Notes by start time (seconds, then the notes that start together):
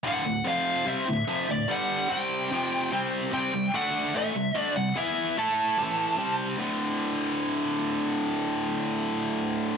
0.03 D2 A2 D3
0.08 F#5
0.25 D2 A2
0.44 F2 C3 F3 F5
0.86 C3 G3 C4 E5
1.06 D2 A2
1.27 F2 C3 F3
1.48 D2 A2 D5
1.68 G2 D3 G3 F#5
2.09 C3 G3 C4 G5
2.51 F2 C3 F3
2.91 C3 G3 C4
3.32 C3 G3 C4 G5
3.53 C3 G3
3.74 D3 A3 D4 F#5
4.14 A2 E3 A3 E5
4.35 C3 G3
4.55 D3 A3 D4
4.60 D5
4.76 C3 G3 F#5
4.96 E3 B3 E4 E5
5.37 A3 E4 A4 A5
5.78 A2 E3 A3
6.18 C3 G3 C4
6.57 D2 A2
6.61 D3